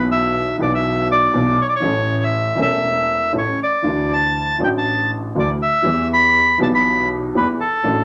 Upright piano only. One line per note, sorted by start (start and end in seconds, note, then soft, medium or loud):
0.00 0.56 B1 medium
0.00 0.56 B2 medium
0.00 0.55 E3 medium
0.00 0.55 F#3 medium
0.00 0.56 B3 medium
0.00 0.57 F#4 medium
0.58 1.30 B1 medium
0.58 1.30 B2 medium
0.58 1.29 E3 medium
0.58 1.30 F#3 medium
0.58 1.30 B3 medium
0.58 1.31 F#4 medium
1.33 1.54 B1 medium
1.33 1.54 B2 medium
1.33 1.54 E3 medium
1.33 1.54 F#3 medium
1.33 1.54 B3 medium
1.33 1.54 F#4 medium
1.80 2.54 A1 medium
1.80 2.54 A2 medium
1.80 2.53 E3 medium
1.80 2.53 A3 medium
1.80 2.54 C#4 medium
1.80 2.55 A4 medium
2.55 3.30 E1 medium
2.55 3.30 E2 medium
2.55 3.29 E3 medium
2.55 3.29 A3 medium
2.55 3.30 C#4 medium
2.59 3.31 A4 medium
3.33 3.55 A1 medium
3.33 3.55 A2 medium
3.33 3.55 E3 soft
3.33 3.55 A3 medium
3.33 3.55 C#4 soft
3.33 3.55 A4 medium
3.82 4.57 D2 medium
3.82 4.57 D3 medium
3.82 4.56 E3 medium
3.82 4.56 A3 soft
3.82 4.57 D4 medium
3.82 4.58 F#4 medium
4.58 5.32 A1 medium
4.58 5.32 A2 medium
4.58 5.31 E3 medium
4.58 5.32 A3 medium
4.58 5.32 D4 medium
4.62 5.33 F#4 medium
5.35 5.57 D2 medium
5.35 5.57 D3 medium
5.35 5.56 E3 medium
5.35 5.57 A3 medium
5.35 5.57 D4 medium
5.35 5.57 F#4 medium
5.83 6.56 E2 medium
5.83 6.56 E3 medium
5.83 6.56 G3 soft
5.83 6.56 B3 medium
5.83 6.57 G4 medium
6.58 7.31 B1 medium
6.58 7.31 B2 medium
6.58 7.30 E3 medium
6.58 7.31 G3 medium
6.58 7.31 B3 medium
6.58 7.32 G4 medium
7.35 7.56 E2 medium
7.35 7.56 E3 medium
7.35 7.56 G3 medium
7.35 7.56 B3 medium
7.35 7.56 G4 medium
7.82 8.04 A1 medium
7.82 8.04 A2 medium
7.82 8.04 F#3 medium
7.82 8.04 A3 medium
7.82 8.04 D4 medium
7.87 8.04 A4 medium